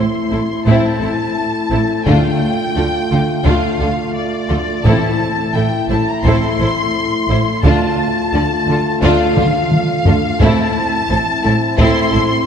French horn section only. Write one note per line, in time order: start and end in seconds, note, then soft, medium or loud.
0.00 4.81 A3 medium
0.00 2.01 E4 medium
2.07 4.86 F4 soft
4.86 10.37 A3 soft
4.86 7.47 E4 soft
7.64 10.37 F4 soft
10.42 12.46 C4 medium
10.42 12.46 E4 medium